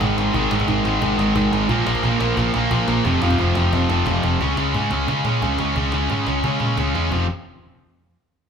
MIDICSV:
0, 0, Header, 1, 5, 480
1, 0, Start_track
1, 0, Key_signature, -4, "minor"
1, 0, Tempo, 338983
1, 489, Time_signature, 4, 2, 24, 8
1, 12032, End_track
2, 0, Start_track
2, 0, Title_t, "Overdriven electric guitar"
2, 0, Program_c, 0, 29
2, 1, Note_on_c, 0, 44, 101
2, 8, Note_on_c, 0, 51, 102
2, 15, Note_on_c, 0, 56, 109
2, 229, Note_off_c, 0, 56, 0
2, 238, Note_off_c, 0, 51, 0
2, 240, Note_off_c, 0, 44, 0
2, 246, Note_on_c, 0, 56, 88
2, 255, Note_on_c, 0, 51, 92
2, 257, Note_on_c, 0, 44, 82
2, 462, Note_off_c, 0, 44, 0
2, 467, Note_off_c, 0, 51, 0
2, 478, Note_off_c, 0, 56, 0
2, 479, Note_on_c, 0, 44, 103
2, 484, Note_on_c, 0, 51, 97
2, 495, Note_on_c, 0, 56, 122
2, 708, Note_off_c, 0, 56, 0
2, 723, Note_off_c, 0, 51, 0
2, 725, Note_on_c, 0, 56, 101
2, 730, Note_off_c, 0, 44, 0
2, 740, Note_on_c, 0, 51, 95
2, 747, Note_on_c, 0, 44, 89
2, 939, Note_off_c, 0, 44, 0
2, 943, Note_off_c, 0, 51, 0
2, 946, Note_off_c, 0, 56, 0
2, 956, Note_on_c, 0, 44, 95
2, 960, Note_on_c, 0, 51, 92
2, 963, Note_on_c, 0, 56, 106
2, 1191, Note_off_c, 0, 56, 0
2, 1195, Note_off_c, 0, 44, 0
2, 1199, Note_off_c, 0, 51, 0
2, 1208, Note_on_c, 0, 56, 96
2, 1212, Note_on_c, 0, 44, 81
2, 1216, Note_on_c, 0, 51, 95
2, 1420, Note_off_c, 0, 44, 0
2, 1427, Note_off_c, 0, 51, 0
2, 1432, Note_off_c, 0, 56, 0
2, 1437, Note_on_c, 0, 44, 104
2, 1444, Note_on_c, 0, 51, 117
2, 1449, Note_on_c, 0, 56, 113
2, 1659, Note_off_c, 0, 56, 0
2, 1664, Note_off_c, 0, 51, 0
2, 1671, Note_off_c, 0, 44, 0
2, 1676, Note_on_c, 0, 56, 94
2, 1681, Note_on_c, 0, 51, 91
2, 1688, Note_on_c, 0, 44, 69
2, 1888, Note_off_c, 0, 44, 0
2, 1891, Note_off_c, 0, 51, 0
2, 1896, Note_off_c, 0, 56, 0
2, 1905, Note_on_c, 0, 44, 104
2, 1908, Note_on_c, 0, 51, 109
2, 1913, Note_on_c, 0, 56, 110
2, 2131, Note_off_c, 0, 56, 0
2, 2137, Note_off_c, 0, 51, 0
2, 2138, Note_off_c, 0, 44, 0
2, 2148, Note_on_c, 0, 56, 98
2, 2154, Note_on_c, 0, 51, 84
2, 2155, Note_on_c, 0, 44, 80
2, 2381, Note_off_c, 0, 56, 0
2, 2384, Note_off_c, 0, 44, 0
2, 2384, Note_off_c, 0, 51, 0
2, 2393, Note_on_c, 0, 46, 97
2, 2396, Note_on_c, 0, 53, 110
2, 2400, Note_on_c, 0, 58, 109
2, 2623, Note_off_c, 0, 58, 0
2, 2635, Note_off_c, 0, 46, 0
2, 2637, Note_off_c, 0, 53, 0
2, 2640, Note_on_c, 0, 58, 94
2, 2643, Note_on_c, 0, 53, 93
2, 2652, Note_on_c, 0, 46, 83
2, 2857, Note_off_c, 0, 46, 0
2, 2870, Note_off_c, 0, 58, 0
2, 2874, Note_on_c, 0, 46, 103
2, 2882, Note_off_c, 0, 53, 0
2, 2887, Note_on_c, 0, 53, 85
2, 2887, Note_on_c, 0, 58, 94
2, 3093, Note_off_c, 0, 58, 0
2, 3110, Note_off_c, 0, 46, 0
2, 3110, Note_on_c, 0, 58, 111
2, 3114, Note_off_c, 0, 53, 0
2, 3120, Note_on_c, 0, 53, 98
2, 3127, Note_on_c, 0, 46, 80
2, 3327, Note_off_c, 0, 46, 0
2, 3344, Note_on_c, 0, 46, 96
2, 3346, Note_off_c, 0, 58, 0
2, 3350, Note_off_c, 0, 53, 0
2, 3355, Note_on_c, 0, 53, 112
2, 3363, Note_on_c, 0, 58, 106
2, 3571, Note_off_c, 0, 58, 0
2, 3580, Note_off_c, 0, 46, 0
2, 3588, Note_on_c, 0, 58, 96
2, 3590, Note_off_c, 0, 53, 0
2, 3596, Note_on_c, 0, 53, 83
2, 3597, Note_on_c, 0, 46, 74
2, 3816, Note_off_c, 0, 46, 0
2, 3827, Note_off_c, 0, 58, 0
2, 3832, Note_off_c, 0, 53, 0
2, 3833, Note_on_c, 0, 46, 93
2, 3838, Note_on_c, 0, 53, 106
2, 3844, Note_on_c, 0, 58, 98
2, 4061, Note_off_c, 0, 58, 0
2, 4072, Note_off_c, 0, 46, 0
2, 4078, Note_on_c, 0, 58, 94
2, 4081, Note_off_c, 0, 53, 0
2, 4086, Note_on_c, 0, 53, 79
2, 4089, Note_on_c, 0, 46, 74
2, 4304, Note_off_c, 0, 58, 0
2, 4309, Note_off_c, 0, 46, 0
2, 4326, Note_on_c, 0, 41, 97
2, 4328, Note_on_c, 0, 48, 119
2, 4331, Note_off_c, 0, 53, 0
2, 4336, Note_on_c, 0, 53, 105
2, 4550, Note_off_c, 0, 53, 0
2, 4558, Note_off_c, 0, 41, 0
2, 4558, Note_off_c, 0, 48, 0
2, 4567, Note_on_c, 0, 53, 100
2, 4575, Note_on_c, 0, 41, 92
2, 4575, Note_on_c, 0, 48, 88
2, 4780, Note_off_c, 0, 41, 0
2, 4796, Note_off_c, 0, 48, 0
2, 4797, Note_off_c, 0, 53, 0
2, 4797, Note_on_c, 0, 41, 99
2, 4813, Note_on_c, 0, 48, 100
2, 4814, Note_on_c, 0, 53, 103
2, 5035, Note_off_c, 0, 48, 0
2, 5035, Note_off_c, 0, 53, 0
2, 5043, Note_off_c, 0, 41, 0
2, 5052, Note_on_c, 0, 48, 98
2, 5052, Note_on_c, 0, 53, 105
2, 5060, Note_on_c, 0, 41, 88
2, 5259, Note_off_c, 0, 41, 0
2, 5271, Note_off_c, 0, 48, 0
2, 5274, Note_off_c, 0, 53, 0
2, 5276, Note_on_c, 0, 41, 98
2, 5288, Note_on_c, 0, 48, 102
2, 5291, Note_on_c, 0, 53, 115
2, 5518, Note_off_c, 0, 53, 0
2, 5526, Note_off_c, 0, 48, 0
2, 5528, Note_off_c, 0, 41, 0
2, 5535, Note_on_c, 0, 53, 101
2, 5543, Note_on_c, 0, 48, 79
2, 5545, Note_on_c, 0, 41, 79
2, 5752, Note_off_c, 0, 41, 0
2, 5762, Note_off_c, 0, 48, 0
2, 5763, Note_off_c, 0, 53, 0
2, 5769, Note_on_c, 0, 41, 112
2, 5779, Note_on_c, 0, 48, 107
2, 5780, Note_on_c, 0, 53, 101
2, 6000, Note_off_c, 0, 53, 0
2, 6002, Note_off_c, 0, 48, 0
2, 6006, Note_off_c, 0, 41, 0
2, 6017, Note_on_c, 0, 53, 90
2, 6019, Note_on_c, 0, 48, 96
2, 6023, Note_on_c, 0, 41, 78
2, 6232, Note_off_c, 0, 53, 0
2, 6234, Note_off_c, 0, 48, 0
2, 6235, Note_off_c, 0, 41, 0
2, 6253, Note_on_c, 0, 49, 97
2, 6255, Note_on_c, 0, 56, 95
2, 6257, Note_on_c, 0, 61, 96
2, 6491, Note_off_c, 0, 61, 0
2, 6497, Note_on_c, 0, 61, 100
2, 6499, Note_off_c, 0, 56, 0
2, 6503, Note_off_c, 0, 49, 0
2, 6504, Note_on_c, 0, 56, 89
2, 6508, Note_on_c, 0, 49, 77
2, 6719, Note_off_c, 0, 49, 0
2, 6725, Note_on_c, 0, 49, 79
2, 6727, Note_off_c, 0, 56, 0
2, 6732, Note_on_c, 0, 56, 79
2, 6733, Note_off_c, 0, 61, 0
2, 6738, Note_on_c, 0, 61, 89
2, 6955, Note_off_c, 0, 61, 0
2, 6961, Note_on_c, 0, 61, 97
2, 6967, Note_off_c, 0, 56, 0
2, 6972, Note_off_c, 0, 49, 0
2, 6973, Note_on_c, 0, 56, 97
2, 6977, Note_on_c, 0, 49, 77
2, 7193, Note_off_c, 0, 49, 0
2, 7206, Note_off_c, 0, 61, 0
2, 7207, Note_off_c, 0, 56, 0
2, 7210, Note_on_c, 0, 49, 89
2, 7212, Note_on_c, 0, 56, 88
2, 7223, Note_on_c, 0, 61, 100
2, 7433, Note_off_c, 0, 61, 0
2, 7441, Note_off_c, 0, 49, 0
2, 7450, Note_on_c, 0, 61, 81
2, 7452, Note_off_c, 0, 56, 0
2, 7458, Note_on_c, 0, 49, 66
2, 7458, Note_on_c, 0, 56, 73
2, 7668, Note_off_c, 0, 49, 0
2, 7678, Note_off_c, 0, 61, 0
2, 7685, Note_on_c, 0, 49, 95
2, 7686, Note_off_c, 0, 56, 0
2, 7691, Note_on_c, 0, 56, 100
2, 7695, Note_on_c, 0, 61, 103
2, 7919, Note_off_c, 0, 61, 0
2, 7928, Note_off_c, 0, 49, 0
2, 7932, Note_off_c, 0, 56, 0
2, 7936, Note_on_c, 0, 61, 95
2, 7937, Note_on_c, 0, 56, 78
2, 7945, Note_on_c, 0, 49, 72
2, 8142, Note_off_c, 0, 49, 0
2, 8152, Note_off_c, 0, 56, 0
2, 8153, Note_off_c, 0, 61, 0
2, 8159, Note_on_c, 0, 49, 87
2, 8169, Note_on_c, 0, 56, 96
2, 8170, Note_on_c, 0, 61, 95
2, 8391, Note_off_c, 0, 61, 0
2, 8397, Note_off_c, 0, 56, 0
2, 8401, Note_off_c, 0, 49, 0
2, 8408, Note_on_c, 0, 61, 91
2, 8414, Note_on_c, 0, 56, 76
2, 8418, Note_on_c, 0, 49, 76
2, 8626, Note_off_c, 0, 49, 0
2, 8635, Note_off_c, 0, 56, 0
2, 8638, Note_off_c, 0, 61, 0
2, 8643, Note_on_c, 0, 49, 84
2, 8652, Note_on_c, 0, 56, 88
2, 8655, Note_on_c, 0, 61, 83
2, 8871, Note_off_c, 0, 61, 0
2, 8876, Note_off_c, 0, 56, 0
2, 8885, Note_off_c, 0, 49, 0
2, 8888, Note_on_c, 0, 61, 94
2, 8893, Note_on_c, 0, 56, 92
2, 8902, Note_on_c, 0, 49, 71
2, 9098, Note_off_c, 0, 49, 0
2, 9102, Note_off_c, 0, 56, 0
2, 9112, Note_off_c, 0, 61, 0
2, 9115, Note_on_c, 0, 49, 82
2, 9119, Note_on_c, 0, 56, 89
2, 9129, Note_on_c, 0, 61, 102
2, 9339, Note_off_c, 0, 61, 0
2, 9347, Note_off_c, 0, 56, 0
2, 9348, Note_off_c, 0, 49, 0
2, 9356, Note_on_c, 0, 61, 73
2, 9364, Note_on_c, 0, 56, 79
2, 9365, Note_on_c, 0, 49, 61
2, 9578, Note_off_c, 0, 49, 0
2, 9583, Note_off_c, 0, 56, 0
2, 9588, Note_off_c, 0, 61, 0
2, 9595, Note_on_c, 0, 49, 91
2, 9600, Note_on_c, 0, 56, 98
2, 9605, Note_on_c, 0, 61, 84
2, 9815, Note_off_c, 0, 61, 0
2, 9826, Note_off_c, 0, 56, 0
2, 9829, Note_off_c, 0, 49, 0
2, 9832, Note_on_c, 0, 61, 86
2, 9843, Note_on_c, 0, 56, 69
2, 9846, Note_on_c, 0, 49, 65
2, 10056, Note_on_c, 0, 41, 90
2, 10060, Note_off_c, 0, 49, 0
2, 10064, Note_off_c, 0, 61, 0
2, 10065, Note_on_c, 0, 48, 87
2, 10066, Note_off_c, 0, 56, 0
2, 10072, Note_on_c, 0, 53, 96
2, 10263, Note_off_c, 0, 41, 0
2, 10267, Note_off_c, 0, 48, 0
2, 10271, Note_off_c, 0, 53, 0
2, 12032, End_track
3, 0, Start_track
3, 0, Title_t, "Overdriven electric guitar"
3, 0, Program_c, 1, 29
3, 0, Note_on_c, 1, 44, 86
3, 0, Note_on_c, 1, 51, 105
3, 0, Note_on_c, 1, 56, 108
3, 436, Note_off_c, 1, 44, 0
3, 472, Note_off_c, 1, 51, 0
3, 496, Note_off_c, 1, 56, 0
3, 12032, End_track
4, 0, Start_track
4, 0, Title_t, "Picked electric bass"
4, 0, Program_c, 2, 34
4, 19, Note_on_c, 2, 32, 99
4, 176, Note_off_c, 2, 32, 0
4, 234, Note_on_c, 2, 32, 81
4, 399, Note_off_c, 2, 32, 0
4, 487, Note_on_c, 2, 32, 106
4, 647, Note_off_c, 2, 32, 0
4, 730, Note_on_c, 2, 32, 94
4, 889, Note_off_c, 2, 32, 0
4, 964, Note_on_c, 2, 32, 90
4, 1125, Note_off_c, 2, 32, 0
4, 1209, Note_on_c, 2, 32, 93
4, 1368, Note_off_c, 2, 32, 0
4, 1442, Note_on_c, 2, 32, 99
4, 1603, Note_off_c, 2, 32, 0
4, 1681, Note_on_c, 2, 32, 93
4, 1842, Note_off_c, 2, 32, 0
4, 1921, Note_on_c, 2, 32, 102
4, 2081, Note_off_c, 2, 32, 0
4, 2159, Note_on_c, 2, 32, 86
4, 2320, Note_off_c, 2, 32, 0
4, 2401, Note_on_c, 2, 34, 102
4, 2561, Note_off_c, 2, 34, 0
4, 2644, Note_on_c, 2, 34, 87
4, 2803, Note_off_c, 2, 34, 0
4, 2881, Note_on_c, 2, 34, 94
4, 3041, Note_off_c, 2, 34, 0
4, 3123, Note_on_c, 2, 34, 95
4, 3282, Note_off_c, 2, 34, 0
4, 3361, Note_on_c, 2, 34, 100
4, 3521, Note_off_c, 2, 34, 0
4, 3608, Note_on_c, 2, 34, 100
4, 3765, Note_off_c, 2, 34, 0
4, 3835, Note_on_c, 2, 34, 97
4, 3996, Note_off_c, 2, 34, 0
4, 4078, Note_on_c, 2, 34, 92
4, 4238, Note_off_c, 2, 34, 0
4, 4326, Note_on_c, 2, 29, 92
4, 4483, Note_off_c, 2, 29, 0
4, 4562, Note_on_c, 2, 29, 97
4, 4721, Note_off_c, 2, 29, 0
4, 4798, Note_on_c, 2, 29, 99
4, 4958, Note_off_c, 2, 29, 0
4, 5055, Note_on_c, 2, 29, 91
4, 5209, Note_off_c, 2, 29, 0
4, 5282, Note_on_c, 2, 29, 100
4, 5441, Note_off_c, 2, 29, 0
4, 5506, Note_on_c, 2, 29, 95
4, 5669, Note_off_c, 2, 29, 0
4, 5758, Note_on_c, 2, 29, 98
4, 5918, Note_off_c, 2, 29, 0
4, 5991, Note_on_c, 2, 29, 87
4, 6153, Note_off_c, 2, 29, 0
4, 6240, Note_on_c, 2, 37, 93
4, 6453, Note_off_c, 2, 37, 0
4, 6473, Note_on_c, 2, 37, 86
4, 6689, Note_off_c, 2, 37, 0
4, 6717, Note_on_c, 2, 44, 84
4, 6931, Note_off_c, 2, 44, 0
4, 6941, Note_on_c, 2, 37, 80
4, 7163, Note_off_c, 2, 37, 0
4, 7199, Note_on_c, 2, 49, 93
4, 7413, Note_off_c, 2, 49, 0
4, 7432, Note_on_c, 2, 46, 87
4, 7649, Note_off_c, 2, 46, 0
4, 7684, Note_on_c, 2, 37, 88
4, 7896, Note_off_c, 2, 37, 0
4, 7917, Note_on_c, 2, 37, 78
4, 8132, Note_off_c, 2, 37, 0
4, 8159, Note_on_c, 2, 37, 95
4, 8374, Note_off_c, 2, 37, 0
4, 8401, Note_on_c, 2, 37, 82
4, 8615, Note_off_c, 2, 37, 0
4, 8640, Note_on_c, 2, 44, 90
4, 8855, Note_off_c, 2, 44, 0
4, 8878, Note_on_c, 2, 37, 79
4, 9094, Note_off_c, 2, 37, 0
4, 9118, Note_on_c, 2, 49, 89
4, 9334, Note_off_c, 2, 49, 0
4, 9352, Note_on_c, 2, 46, 87
4, 9571, Note_off_c, 2, 46, 0
4, 9594, Note_on_c, 2, 37, 81
4, 9813, Note_off_c, 2, 37, 0
4, 9836, Note_on_c, 2, 40, 71
4, 10054, Note_off_c, 2, 40, 0
4, 10080, Note_on_c, 2, 29, 88
4, 10306, Note_off_c, 2, 29, 0
4, 12032, End_track
5, 0, Start_track
5, 0, Title_t, "Cajon"
5, 11, Note_on_c, 9, 36, 120
5, 153, Note_off_c, 9, 36, 0
5, 253, Note_on_c, 9, 38, 115
5, 395, Note_off_c, 9, 38, 0
5, 485, Note_on_c, 9, 36, 112
5, 627, Note_off_c, 9, 36, 0
5, 723, Note_on_c, 9, 38, 127
5, 843, Note_on_c, 9, 36, 101
5, 864, Note_off_c, 9, 38, 0
5, 964, Note_off_c, 9, 36, 0
5, 964, Note_on_c, 9, 36, 91
5, 1106, Note_off_c, 9, 36, 0
5, 1203, Note_on_c, 9, 38, 113
5, 1345, Note_off_c, 9, 38, 0
5, 1441, Note_on_c, 9, 36, 121
5, 1583, Note_off_c, 9, 36, 0
5, 1686, Note_on_c, 9, 38, 118
5, 1828, Note_off_c, 9, 38, 0
5, 1920, Note_on_c, 9, 36, 126
5, 2061, Note_off_c, 9, 36, 0
5, 2165, Note_on_c, 9, 38, 111
5, 2307, Note_off_c, 9, 38, 0
5, 2398, Note_on_c, 9, 36, 110
5, 2539, Note_off_c, 9, 36, 0
5, 2642, Note_on_c, 9, 38, 120
5, 2759, Note_on_c, 9, 36, 90
5, 2783, Note_off_c, 9, 38, 0
5, 2881, Note_off_c, 9, 36, 0
5, 2881, Note_on_c, 9, 36, 94
5, 3022, Note_off_c, 9, 36, 0
5, 3123, Note_on_c, 9, 38, 112
5, 3264, Note_off_c, 9, 38, 0
5, 3358, Note_on_c, 9, 36, 119
5, 3500, Note_off_c, 9, 36, 0
5, 3593, Note_on_c, 9, 38, 112
5, 3734, Note_off_c, 9, 38, 0
5, 3837, Note_on_c, 9, 36, 122
5, 3979, Note_off_c, 9, 36, 0
5, 4076, Note_on_c, 9, 38, 113
5, 4217, Note_off_c, 9, 38, 0
5, 4318, Note_on_c, 9, 36, 121
5, 4460, Note_off_c, 9, 36, 0
5, 4555, Note_on_c, 9, 38, 119
5, 4679, Note_on_c, 9, 36, 104
5, 4697, Note_off_c, 9, 38, 0
5, 4797, Note_off_c, 9, 36, 0
5, 4797, Note_on_c, 9, 36, 96
5, 4939, Note_off_c, 9, 36, 0
5, 5031, Note_on_c, 9, 38, 117
5, 5173, Note_off_c, 9, 38, 0
5, 5279, Note_on_c, 9, 36, 120
5, 5421, Note_off_c, 9, 36, 0
5, 5516, Note_on_c, 9, 38, 119
5, 5658, Note_off_c, 9, 38, 0
5, 5745, Note_on_c, 9, 38, 75
5, 5758, Note_on_c, 9, 36, 120
5, 5886, Note_off_c, 9, 38, 0
5, 5899, Note_off_c, 9, 36, 0
5, 5994, Note_on_c, 9, 38, 85
5, 6136, Note_off_c, 9, 38, 0
5, 6240, Note_on_c, 9, 36, 93
5, 6381, Note_off_c, 9, 36, 0
5, 6473, Note_on_c, 9, 38, 112
5, 6615, Note_off_c, 9, 38, 0
5, 6718, Note_on_c, 9, 36, 95
5, 6860, Note_off_c, 9, 36, 0
5, 6949, Note_on_c, 9, 38, 109
5, 7090, Note_off_c, 9, 38, 0
5, 7196, Note_on_c, 9, 36, 106
5, 7338, Note_off_c, 9, 36, 0
5, 7430, Note_on_c, 9, 38, 111
5, 7572, Note_off_c, 9, 38, 0
5, 7677, Note_on_c, 9, 36, 115
5, 7819, Note_off_c, 9, 36, 0
5, 7908, Note_on_c, 9, 38, 110
5, 8050, Note_off_c, 9, 38, 0
5, 8154, Note_on_c, 9, 36, 103
5, 8295, Note_off_c, 9, 36, 0
5, 8383, Note_on_c, 9, 38, 109
5, 8524, Note_off_c, 9, 38, 0
5, 8635, Note_on_c, 9, 36, 95
5, 8776, Note_off_c, 9, 36, 0
5, 8872, Note_on_c, 9, 38, 102
5, 9013, Note_off_c, 9, 38, 0
5, 9108, Note_on_c, 9, 38, 53
5, 9115, Note_on_c, 9, 36, 109
5, 9250, Note_off_c, 9, 38, 0
5, 9257, Note_off_c, 9, 36, 0
5, 9347, Note_on_c, 9, 38, 59
5, 9489, Note_off_c, 9, 38, 0
5, 9593, Note_on_c, 9, 38, 85
5, 9596, Note_on_c, 9, 36, 97
5, 9734, Note_off_c, 9, 38, 0
5, 9737, Note_off_c, 9, 36, 0
5, 9843, Note_on_c, 9, 38, 74
5, 9985, Note_off_c, 9, 38, 0
5, 10079, Note_on_c, 9, 36, 90
5, 10220, Note_off_c, 9, 36, 0
5, 12032, End_track
0, 0, End_of_file